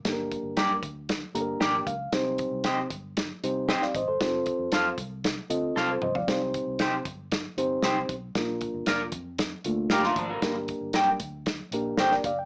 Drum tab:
HH |x-x-x-x-x-x-x-x-|x-x-x-x-x-x-x-x-|x-x-x-x-x-x-----|x-x-x-x-x-x-x-x-|
SD |o---o---o---o---|o---o---o---oo--|o---o---o---o---|o---o---o---o---|
T2 |----------------|----------------|--------------o-|----------------|
FT |----------------|----------------|---------------o|----------------|
BD |o-o---o-o-----o-|o-o---o-o-----o-|o-o---o-o-------|o-o---o-o-----o-|

HH |x-x-x-x-x-x-x-x-|x-x-x-x-x-x-x-x-|
SD |o---o---o---oo--|o---o---o---oo--|
T2 |----------------|----------------|
FT |----------------|----------------|
BD |o-o---o-o-----o-|o-o---o-o-----o-|